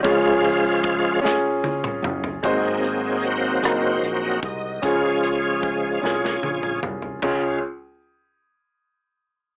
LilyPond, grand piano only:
<<
  \new Staff \with { instrumentName = "Grand piano" } { \time 6/8 \key des \major \tempo 4. = 50 <des' f' aes'>4 r8 <des' f' aes'>4 r8 | <aes c' ees' ges' c''>4 r8 <aes c' ees' ges' bes'>4 r8 | <des' f' aes'>4 r8 <des' f' aes'>4 r8 | <des' f' aes'>8 r2 r8 | }
  \new Staff \with { instrumentName = "Grand piano" } { \clef bass \time 6/8 \key des \major des4. r4. | aes,4. r4. | des4. r4. | des,8 r2 r8 | }
>>